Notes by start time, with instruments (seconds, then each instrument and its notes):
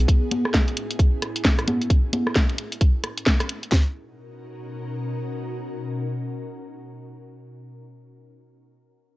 Already playing: ambient pad B3 G#4
0.08 kick, closed hi-hat
0.31 closed hi-hat, high conga
0.45 cross-stick
0.54 kick, snare
0.68 closed hi-hat
0.77 closed hi-hat
0.91 closed hi-hat
0.99 kick, closed hi-hat
1.22 cross-stick, closed hi-hat
1.36 closed hi-hat
1.45 kick, snare
1.59 cross-stick, closed hi-hat
1.68 closed hi-hat, high conga
1.81 closed hi-hat
1.90 kick, closed hi-hat
2.13 closed hi-hat, high conga
2.27 cross-stick
2.36 kick, snare
2.49 closed hi-hat
2.58 closed hi-hat
2.72 closed hi-hat
2.81 kick, closed hi-hat
3.04 cross-stick, closed hi-hat
3.17 closed hi-hat
3.26 kick, snare
3.40 cross-stick, closed hi-hat
3.49 closed hi-hat
3.63 closed hi-hat
3.72 ambient pad B2 C#4 D#4 F#4 A#4, kick, snare, clap